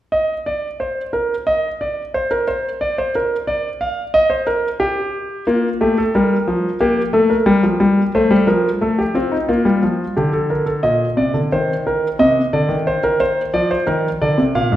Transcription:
grand piano
0.12 D#5
0.46 D5
0.80 C5
1.13 A#4
1.47 D#5
1.81 D5
2.14 C5
2.31 A#4
2.48 C5
2.81 D5
2.98 C5
3.15 A#4
3.47 D5
3.81 F5
4.14 D#5
4.30 C5
4.47 A#4
4.80 G4
5.47 A#3 F4
5.81 A3 G4
5.98 A4
6.15 G3 A#4
6.47 F3
6.80 A#3 G4
7.13 A3 A4
7.30 A#4
7.46 G3
7.63 F3
7.80 G3
8.15 A3 C5
8.31 G3
8.47 F3 A#4
8.81 A3 A4
8.99 G4
9.14 C4 F4
9.32 D#4
9.49 A#3 F4
9.65 G3
9.83 F3
10.17 D3 G4
10.33 A4
10.50 A#4
10.66 A4
10.83 A#2 D#5
11.17 C3 D5
11.34 D3
11.52 D#3 C5
11.87 A#4
12.19 C3 D#5
12.53 D3 D5
12.69 D#3
12.87 C5
13.04 A#4
13.20 C5
13.54 F3 D5
13.71 C5
13.87 D#3 A#4
14.22 D3 D5
14.38 C3
14.55 A#2 F5
14.72 G#2

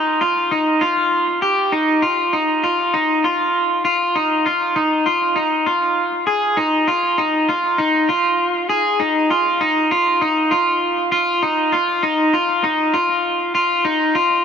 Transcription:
clean electric guitar
Already playing: D#4
0.21 F4
0.51 D#4
0.81 F4
1.42 G4
1.72 D#4
2.02 F4
2.33 D#4
2.64 F4
2.94 D#4
3.24 F4
3.85 F4
4.16 D#4
4.46 F4
4.76 D#4
5.06 F4
5.36 D#4
5.66 F4
6.27 G#4
6.57 D#4
6.88 F4
7.18 D#4
7.49 F4
7.78 D#4
8.09 F4
8.69 G#4
9.00 D#4
9.31 F4
9.61 D#4
9.91 F4
10.21 D#4
10.51 F4
11.12 F4
11.43 D#4
11.72 F4
12.03 D#4
12.33 F4
12.64 D#4
12.94 F4
13.55 F4
13.85 D#4
14.15 F4

